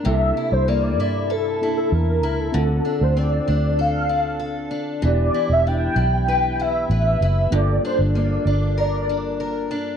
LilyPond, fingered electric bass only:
\new Staff \with { instrumentName = "Fingered electric bass" } { \clef bass \time 4/4 \key d \minor \tempo 4 = 96 c,8 r16 c,8. g,4. e,8 cis,8 | d,8 r16 d,8. d,2 r8 | e,,8 r16 e,,8. b,,4. a,,8 fis,,8 | g,,8 r16 g,,8. g,,2 r8 | }